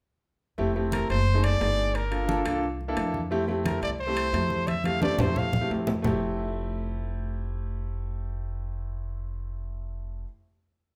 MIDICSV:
0, 0, Header, 1, 5, 480
1, 0, Start_track
1, 0, Key_signature, -1, "major"
1, 0, Tempo, 340716
1, 833, Time_signature, 4, 2, 24, 8
1, 15436, End_track
2, 0, Start_track
2, 0, Title_t, "Trumpet"
2, 0, Program_c, 0, 56
2, 1308, Note_on_c, 0, 70, 82
2, 1531, Note_off_c, 0, 70, 0
2, 1548, Note_on_c, 0, 72, 93
2, 2030, Note_on_c, 0, 74, 99
2, 2051, Note_off_c, 0, 72, 0
2, 2753, Note_on_c, 0, 70, 80
2, 2774, Note_off_c, 0, 74, 0
2, 3468, Note_off_c, 0, 70, 0
2, 5148, Note_on_c, 0, 70, 80
2, 5370, Note_off_c, 0, 70, 0
2, 5393, Note_on_c, 0, 74, 86
2, 5499, Note_off_c, 0, 74, 0
2, 5634, Note_on_c, 0, 72, 102
2, 6589, Note_on_c, 0, 76, 90
2, 6610, Note_off_c, 0, 72, 0
2, 6841, Note_on_c, 0, 77, 92
2, 6862, Note_off_c, 0, 76, 0
2, 7075, Note_off_c, 0, 77, 0
2, 7085, Note_on_c, 0, 74, 98
2, 7333, Note_on_c, 0, 72, 88
2, 7354, Note_off_c, 0, 74, 0
2, 7576, Note_on_c, 0, 77, 91
2, 7597, Note_off_c, 0, 72, 0
2, 8044, Note_off_c, 0, 77, 0
2, 15436, End_track
3, 0, Start_track
3, 0, Title_t, "Grand piano"
3, 0, Program_c, 1, 0
3, 816, Note_on_c, 1, 57, 81
3, 827, Note_on_c, 1, 64, 77
3, 828, Note_on_c, 1, 60, 74
3, 833, Note_on_c, 1, 67, 88
3, 991, Note_off_c, 1, 57, 0
3, 997, Note_off_c, 1, 60, 0
3, 997, Note_off_c, 1, 64, 0
3, 1000, Note_off_c, 1, 67, 0
3, 1066, Note_on_c, 1, 57, 73
3, 1069, Note_on_c, 1, 60, 72
3, 1069, Note_on_c, 1, 64, 67
3, 1075, Note_on_c, 1, 67, 81
3, 1654, Note_off_c, 1, 57, 0
3, 1656, Note_off_c, 1, 60, 0
3, 1656, Note_off_c, 1, 64, 0
3, 1659, Note_off_c, 1, 67, 0
3, 1889, Note_on_c, 1, 57, 74
3, 1896, Note_on_c, 1, 60, 62
3, 1898, Note_on_c, 1, 63, 68
3, 1901, Note_on_c, 1, 68, 78
3, 2150, Note_off_c, 1, 57, 0
3, 2153, Note_off_c, 1, 60, 0
3, 2154, Note_off_c, 1, 63, 0
3, 2156, Note_off_c, 1, 68, 0
3, 2249, Note_on_c, 1, 57, 56
3, 2251, Note_on_c, 1, 60, 55
3, 2255, Note_on_c, 1, 63, 53
3, 2259, Note_on_c, 1, 68, 68
3, 2737, Note_off_c, 1, 57, 0
3, 2738, Note_off_c, 1, 60, 0
3, 2740, Note_off_c, 1, 63, 0
3, 2742, Note_off_c, 1, 68, 0
3, 2974, Note_on_c, 1, 58, 65
3, 2978, Note_on_c, 1, 62, 54
3, 2983, Note_on_c, 1, 65, 57
3, 2988, Note_on_c, 1, 69, 71
3, 3147, Note_off_c, 1, 58, 0
3, 3149, Note_off_c, 1, 62, 0
3, 3151, Note_off_c, 1, 65, 0
3, 3154, Note_off_c, 1, 69, 0
3, 3202, Note_on_c, 1, 58, 83
3, 3204, Note_on_c, 1, 62, 75
3, 3213, Note_on_c, 1, 65, 78
3, 3218, Note_on_c, 1, 69, 93
3, 3381, Note_off_c, 1, 58, 0
3, 3382, Note_off_c, 1, 62, 0
3, 3387, Note_off_c, 1, 65, 0
3, 3389, Note_off_c, 1, 69, 0
3, 3448, Note_on_c, 1, 58, 87
3, 3454, Note_on_c, 1, 62, 78
3, 3458, Note_on_c, 1, 65, 78
3, 3463, Note_on_c, 1, 69, 95
3, 3696, Note_off_c, 1, 58, 0
3, 3699, Note_off_c, 1, 62, 0
3, 3701, Note_off_c, 1, 65, 0
3, 3703, Note_off_c, 1, 69, 0
3, 4060, Note_on_c, 1, 58, 77
3, 4065, Note_on_c, 1, 62, 73
3, 4065, Note_on_c, 1, 69, 93
3, 4068, Note_on_c, 1, 64, 75
3, 4482, Note_off_c, 1, 58, 0
3, 4484, Note_off_c, 1, 62, 0
3, 4484, Note_off_c, 1, 69, 0
3, 4486, Note_off_c, 1, 64, 0
3, 4660, Note_on_c, 1, 57, 81
3, 4663, Note_on_c, 1, 60, 76
3, 4671, Note_on_c, 1, 64, 80
3, 4672, Note_on_c, 1, 67, 97
3, 4830, Note_off_c, 1, 57, 0
3, 4831, Note_off_c, 1, 60, 0
3, 4835, Note_off_c, 1, 64, 0
3, 4836, Note_off_c, 1, 67, 0
3, 4901, Note_on_c, 1, 57, 73
3, 4904, Note_on_c, 1, 60, 72
3, 4908, Note_on_c, 1, 67, 83
3, 4909, Note_on_c, 1, 64, 68
3, 5491, Note_off_c, 1, 57, 0
3, 5493, Note_off_c, 1, 60, 0
3, 5494, Note_off_c, 1, 67, 0
3, 5495, Note_off_c, 1, 64, 0
3, 5734, Note_on_c, 1, 57, 73
3, 5737, Note_on_c, 1, 60, 71
3, 5745, Note_on_c, 1, 67, 84
3, 5746, Note_on_c, 1, 64, 68
3, 5992, Note_off_c, 1, 57, 0
3, 5993, Note_off_c, 1, 60, 0
3, 5998, Note_off_c, 1, 64, 0
3, 5998, Note_off_c, 1, 67, 0
3, 6094, Note_on_c, 1, 57, 62
3, 6100, Note_on_c, 1, 60, 54
3, 6101, Note_on_c, 1, 64, 55
3, 6105, Note_on_c, 1, 67, 64
3, 6605, Note_off_c, 1, 57, 0
3, 6608, Note_off_c, 1, 60, 0
3, 6609, Note_off_c, 1, 64, 0
3, 6611, Note_off_c, 1, 67, 0
3, 6817, Note_on_c, 1, 57, 58
3, 6819, Note_on_c, 1, 60, 60
3, 6819, Note_on_c, 1, 64, 57
3, 6826, Note_on_c, 1, 67, 69
3, 6991, Note_off_c, 1, 57, 0
3, 6991, Note_off_c, 1, 60, 0
3, 6992, Note_off_c, 1, 64, 0
3, 6995, Note_off_c, 1, 67, 0
3, 7050, Note_on_c, 1, 57, 80
3, 7050, Note_on_c, 1, 60, 72
3, 7056, Note_on_c, 1, 64, 73
3, 7061, Note_on_c, 1, 67, 91
3, 7228, Note_off_c, 1, 57, 0
3, 7228, Note_off_c, 1, 60, 0
3, 7231, Note_off_c, 1, 64, 0
3, 7233, Note_off_c, 1, 67, 0
3, 7290, Note_on_c, 1, 57, 74
3, 7297, Note_on_c, 1, 60, 70
3, 7299, Note_on_c, 1, 64, 65
3, 7304, Note_on_c, 1, 67, 75
3, 7721, Note_off_c, 1, 57, 0
3, 7724, Note_off_c, 1, 60, 0
3, 7725, Note_off_c, 1, 64, 0
3, 7728, Note_off_c, 1, 67, 0
3, 7898, Note_on_c, 1, 60, 64
3, 7899, Note_on_c, 1, 57, 66
3, 7905, Note_on_c, 1, 64, 61
3, 7909, Note_on_c, 1, 67, 74
3, 8326, Note_off_c, 1, 57, 0
3, 8326, Note_off_c, 1, 60, 0
3, 8329, Note_off_c, 1, 64, 0
3, 8331, Note_off_c, 1, 67, 0
3, 8484, Note_on_c, 1, 57, 79
3, 8501, Note_on_c, 1, 60, 70
3, 8520, Note_on_c, 1, 64, 75
3, 8536, Note_on_c, 1, 67, 82
3, 14401, Note_off_c, 1, 57, 0
3, 14409, Note_off_c, 1, 60, 0
3, 14418, Note_off_c, 1, 64, 0
3, 14427, Note_off_c, 1, 67, 0
3, 15436, End_track
4, 0, Start_track
4, 0, Title_t, "Upright bass"
4, 0, Program_c, 2, 32
4, 817, Note_on_c, 2, 29, 95
4, 1491, Note_off_c, 2, 29, 0
4, 1541, Note_on_c, 2, 30, 92
4, 2212, Note_off_c, 2, 30, 0
4, 2260, Note_on_c, 2, 31, 83
4, 3381, Note_off_c, 2, 31, 0
4, 3456, Note_on_c, 2, 36, 81
4, 4129, Note_off_c, 2, 36, 0
4, 4180, Note_on_c, 2, 41, 81
4, 5302, Note_off_c, 2, 41, 0
4, 5381, Note_on_c, 2, 36, 86
4, 6053, Note_off_c, 2, 36, 0
4, 6097, Note_on_c, 2, 41, 84
4, 7224, Note_off_c, 2, 41, 0
4, 7303, Note_on_c, 2, 41, 87
4, 7978, Note_off_c, 2, 41, 0
4, 8027, Note_on_c, 2, 41, 79
4, 8454, Note_off_c, 2, 41, 0
4, 8507, Note_on_c, 2, 29, 89
4, 14412, Note_off_c, 2, 29, 0
4, 15436, End_track
5, 0, Start_track
5, 0, Title_t, "Drums"
5, 825, Note_on_c, 9, 63, 35
5, 965, Note_off_c, 9, 63, 0
5, 1069, Note_on_c, 9, 63, 31
5, 1210, Note_off_c, 9, 63, 0
5, 1298, Note_on_c, 9, 63, 84
5, 1312, Note_on_c, 9, 65, 85
5, 1312, Note_on_c, 9, 66, 58
5, 1439, Note_off_c, 9, 63, 0
5, 1453, Note_off_c, 9, 65, 0
5, 1453, Note_off_c, 9, 66, 0
5, 1545, Note_on_c, 9, 63, 35
5, 1552, Note_on_c, 9, 65, 61
5, 1686, Note_off_c, 9, 63, 0
5, 1693, Note_off_c, 9, 65, 0
5, 1779, Note_on_c, 9, 63, 34
5, 1920, Note_off_c, 9, 63, 0
5, 2024, Note_on_c, 9, 63, 32
5, 2025, Note_on_c, 9, 65, 84
5, 2165, Note_off_c, 9, 63, 0
5, 2166, Note_off_c, 9, 65, 0
5, 2265, Note_on_c, 9, 63, 32
5, 2270, Note_on_c, 9, 65, 60
5, 2270, Note_on_c, 9, 66, 76
5, 2406, Note_off_c, 9, 63, 0
5, 2411, Note_off_c, 9, 65, 0
5, 2411, Note_off_c, 9, 66, 0
5, 2743, Note_on_c, 9, 63, 35
5, 2746, Note_on_c, 9, 65, 75
5, 2884, Note_off_c, 9, 63, 0
5, 2887, Note_off_c, 9, 65, 0
5, 2982, Note_on_c, 9, 65, 62
5, 2986, Note_on_c, 9, 63, 27
5, 3123, Note_off_c, 9, 65, 0
5, 3127, Note_off_c, 9, 63, 0
5, 3217, Note_on_c, 9, 66, 53
5, 3222, Note_on_c, 9, 63, 90
5, 3358, Note_off_c, 9, 66, 0
5, 3363, Note_off_c, 9, 63, 0
5, 3459, Note_on_c, 9, 65, 85
5, 3464, Note_on_c, 9, 63, 34
5, 3600, Note_off_c, 9, 65, 0
5, 3605, Note_off_c, 9, 63, 0
5, 3707, Note_on_c, 9, 63, 34
5, 3848, Note_off_c, 9, 63, 0
5, 3954, Note_on_c, 9, 63, 35
5, 4095, Note_off_c, 9, 63, 0
5, 4180, Note_on_c, 9, 65, 86
5, 4180, Note_on_c, 9, 66, 73
5, 4193, Note_on_c, 9, 63, 34
5, 4321, Note_off_c, 9, 65, 0
5, 4321, Note_off_c, 9, 66, 0
5, 4334, Note_off_c, 9, 63, 0
5, 4427, Note_on_c, 9, 63, 73
5, 4568, Note_off_c, 9, 63, 0
5, 4672, Note_on_c, 9, 63, 31
5, 4813, Note_off_c, 9, 63, 0
5, 4909, Note_on_c, 9, 63, 29
5, 5050, Note_off_c, 9, 63, 0
5, 5150, Note_on_c, 9, 63, 96
5, 5150, Note_on_c, 9, 65, 79
5, 5150, Note_on_c, 9, 66, 57
5, 5290, Note_off_c, 9, 65, 0
5, 5290, Note_off_c, 9, 66, 0
5, 5291, Note_off_c, 9, 63, 0
5, 5385, Note_on_c, 9, 63, 32
5, 5392, Note_on_c, 9, 65, 61
5, 5526, Note_off_c, 9, 63, 0
5, 5533, Note_off_c, 9, 65, 0
5, 5620, Note_on_c, 9, 63, 31
5, 5761, Note_off_c, 9, 63, 0
5, 5858, Note_on_c, 9, 63, 34
5, 5870, Note_on_c, 9, 65, 92
5, 5999, Note_off_c, 9, 63, 0
5, 6011, Note_off_c, 9, 65, 0
5, 6104, Note_on_c, 9, 63, 33
5, 6113, Note_on_c, 9, 65, 69
5, 6113, Note_on_c, 9, 66, 76
5, 6245, Note_off_c, 9, 63, 0
5, 6254, Note_off_c, 9, 65, 0
5, 6254, Note_off_c, 9, 66, 0
5, 6343, Note_on_c, 9, 63, 70
5, 6484, Note_off_c, 9, 63, 0
5, 6580, Note_on_c, 9, 63, 71
5, 6594, Note_on_c, 9, 65, 72
5, 6721, Note_off_c, 9, 63, 0
5, 6735, Note_off_c, 9, 65, 0
5, 6816, Note_on_c, 9, 63, 63
5, 6839, Note_on_c, 9, 65, 68
5, 6957, Note_off_c, 9, 63, 0
5, 6979, Note_off_c, 9, 65, 0
5, 7067, Note_on_c, 9, 63, 92
5, 7081, Note_on_c, 9, 65, 71
5, 7208, Note_off_c, 9, 63, 0
5, 7222, Note_off_c, 9, 65, 0
5, 7305, Note_on_c, 9, 64, 101
5, 7324, Note_on_c, 9, 65, 72
5, 7446, Note_off_c, 9, 64, 0
5, 7465, Note_off_c, 9, 65, 0
5, 7552, Note_on_c, 9, 64, 69
5, 7693, Note_off_c, 9, 64, 0
5, 7791, Note_on_c, 9, 64, 90
5, 7932, Note_off_c, 9, 64, 0
5, 8047, Note_on_c, 9, 66, 77
5, 8188, Note_off_c, 9, 66, 0
5, 8269, Note_on_c, 9, 64, 75
5, 8282, Note_on_c, 9, 66, 92
5, 8410, Note_off_c, 9, 64, 0
5, 8423, Note_off_c, 9, 66, 0
5, 8516, Note_on_c, 9, 64, 96
5, 8524, Note_on_c, 9, 66, 85
5, 8657, Note_off_c, 9, 64, 0
5, 8665, Note_off_c, 9, 66, 0
5, 15436, End_track
0, 0, End_of_file